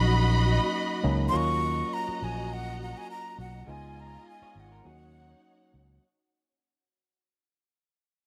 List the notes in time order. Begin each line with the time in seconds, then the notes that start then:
Already playing: A#1 F#3 A#3 C#4 D#4 F#4 D#5 B5
1.03 C#2 F#3 A#3 C#4 D#4
1.29 F#3 A#3 F#4 D#5 A#5 C6
1.34 D#2 C#4 F4 C#6
1.93 A#5
2.08 muted fingered electric bass stroke
2.22 A#1 G#5
2.53 F#5
2.82 F#5
2.97 G#5
3.11 A#5
3.38 B1 F#5
3.67 C#2 G#3 B3 D#4 F4 D#5 G#5
4.00 A#5
4.29 G#5
4.42 G#4 C#5, muted fingered electric bass stroke
4.56 G#1
4.60 F#5
4.72 F4 A#4
4.84 D#2 F#3 A#3 C#4 D#4 F#4 G#4 C#5 F#5
5.01 C#4 F#4
5.74 C#2